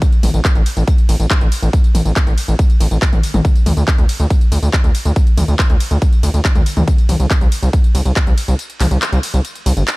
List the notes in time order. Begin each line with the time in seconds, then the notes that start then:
0.02 kick, closed hi-hat, tambourine
0.13 closed hi-hat, tambourine
0.23 A1, open hi-hat, mid tom, ride, tambourine
0.34 A1, closed hi-hat, tambourine
0.45 kick, clap, closed hi-hat, tambourine
0.55 A1, closed hi-hat, tambourine
0.66 open hi-hat, ride, tambourine
0.77 A1, closed hi-hat, tambourine
0.88 kick, closed hi-hat, tambourine
0.98 closed hi-hat, tambourine
1.09 A1, open hi-hat, ride, tambourine
1.20 A1, closed hi-hat, tambourine
1.30 kick, clap, closed hi-hat, tambourine
1.41 A1, closed hi-hat, tambourine
1.52 open hi-hat, ride, tambourine
1.62 A1, closed hi-hat, tambourine
1.73 kick, closed hi-hat, tambourine
1.84 closed hi-hat, tambourine
1.95 A1, open hi-hat, mid tom, ride, tambourine
2.05 A1, closed hi-hat, tambourine
2.16 kick, clap, closed hi-hat, tambourine
2.27 A1, closed hi-hat, tambourine
2.38 open hi-hat, ride, tambourine
2.48 A1, closed hi-hat, tambourine
2.59 kick, closed hi-hat, tambourine
2.70 closed hi-hat, tambourine
2.80 A1, open hi-hat, ride, tambourine
2.91 A1, closed hi-hat, tambourine
3.02 kick, clap, closed hi-hat, tambourine
3.13 A1, closed hi-hat, mid tom, tambourine
3.23 open hi-hat, ride, tambourine
3.34 A1, closed hi-hat, mid tom, tambourine
3.45 kick, closed hi-hat, tambourine
3.56 closed hi-hat, tambourine
3.66 D2, open hi-hat, mid tom, ride, tambourine
3.77 D2, closed hi-hat, tambourine
3.88 kick, clap, closed hi-hat, tambourine
3.98 D2, closed hi-hat, tambourine
4.09 open hi-hat, ride, tambourine
4.20 D2, closed hi-hat, tambourine
4.30 kick, closed hi-hat, tambourine
4.41 closed hi-hat, tambourine
4.52 D2, open hi-hat, ride, tambourine
4.63 D2, closed hi-hat, tambourine
4.73 kick, clap, closed hi-hat, tambourine
4.84 D2, closed hi-hat, tambourine
4.95 open hi-hat, ride, tambourine
5.05 D2, closed hi-hat, tambourine
5.16 kick, closed hi-hat, tambourine
5.27 closed hi-hat, tambourine
5.38 D2, open hi-hat, mid tom, ride, tambourine
5.48 D2, closed hi-hat, tambourine
5.59 kick, clap, closed hi-hat, tambourine
5.70 D2, closed hi-hat, tambourine
5.80 open hi-hat, ride, tambourine
5.91 D2, closed hi-hat, tambourine
6.02 kick, closed hi-hat, tambourine
6.13 closed hi-hat, tambourine
6.23 D2, open hi-hat, ride, tambourine
6.34 D2, closed hi-hat, tambourine
6.45 kick, clap, closed hi-hat, tambourine
6.55 D2, closed hi-hat, mid tom, tambourine
6.66 open hi-hat, ride, tambourine
6.77 D2, closed hi-hat, mid tom, tambourine
6.88 kick, closed hi-hat, tambourine
6.98 closed hi-hat, tambourine
7.09 C2, open hi-hat, mid tom, ride, tambourine
7.20 C2, closed hi-hat, tambourine
7.30 kick, clap, closed hi-hat, tambourine
7.41 C2, closed hi-hat, tambourine
7.52 open hi-hat, ride, tambourine
7.63 C2, closed hi-hat, tambourine
7.73 kick, closed hi-hat, tambourine
7.84 closed hi-hat, tambourine
7.95 C2, open hi-hat, ride, tambourine
8.05 C2, closed hi-hat, tambourine
8.16 kick, clap, closed hi-hat, tambourine
8.27 C2, closed hi-hat, tambourine
8.38 open hi-hat, ride, tambourine
8.48 C2, closed hi-hat, tambourine
8.59 closed hi-hat, tambourine
8.70 closed hi-hat, tambourine
8.80 C2, clap, open hi-hat, mid tom, ride, tambourine
8.91 C2, closed hi-hat, tambourine
9.02 clap, closed hi-hat, tambourine
9.12 C2, closed hi-hat, tambourine
9.23 open hi-hat, ride, tambourine
9.34 C2, closed hi-hat, tambourine
9.45 closed hi-hat, tambourine
9.55 closed hi-hat, tambourine
9.66 C2, open hi-hat, ride, tambourine
9.77 G1, closed hi-hat, tambourine
9.88 clap, closed hi-hat, tambourine